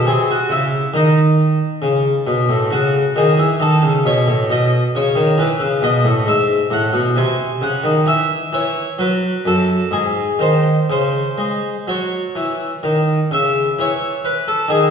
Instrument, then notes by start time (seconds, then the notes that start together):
harpsichord
0.06 C3 G#4
0.31 F#4
0.49 C#3 E4
0.94 D#3 D#4
1.82 C#3
2.27 B2
2.49 A2
2.71 C#3 F#4
3.16 D#3 G#4
3.38 E3
3.60 D#3 A4
3.82 C#3
4.05 B2 C#5
4.27 A2
4.50 B2 D#5
4.95 C#3 C#5
5.16 D#3
5.38 E3 B4
5.60 C#3
5.82 B2 D#5
6.04 A2
6.26 G#2 E5
6.70 A2 F#5
6.93 B2
7.16 C3 G#5
7.61 C#3 F#5
7.84 D#3
8.06 E3 E5
8.53 E3 C#5
8.99 F#3 B4
9.45 F#2 A4
9.91 G#2 G#4
10.39 D#3 C5
10.90 C#3 C5
11.38 G#3
11.87 F#3 C#5
12.35 E3
12.83 D#3
13.31 C#3 E5
13.79 E3 C#5
14.25 B4
14.48 A4
14.68 D#3 G#4